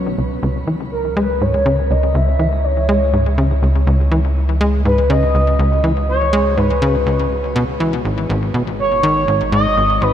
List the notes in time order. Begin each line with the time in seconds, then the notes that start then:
Already playing: B1 B2 F#3 C#4 C#5
0.18 C#2 C#3
0.43 C#2
0.67 E3
0.73 G#3
0.92 A#4
1.17 G#3 B4
1.41 G#2 C#5
1.66 C#3
1.91 C#2 D#5
1.98 E4
2.15 C#2 E5
2.39 E3
2.64 C#5
2.89 G#3
3.14 G#2
3.38 C#3
3.63 C#2
3.87 C#2
4.12 E3
4.61 G#3
4.79 F#4
4.85 G#2 B4
5.10 C#3 D#5
5.35 C#2
5.59 C#2
5.84 E3
6.08 C#5
6.33 G#3
6.57 G#2 B4
6.82 C#3
7.06 C#2
7.56 B2
7.80 E3
8.05 G#1
8.30 G#1
8.52 B2 D#4
8.79 C#5
9.03 D#3
9.15 A#5
9.28 G#1
9.52 G#2 D#5
9.77 G#1
10.00 G#1 B4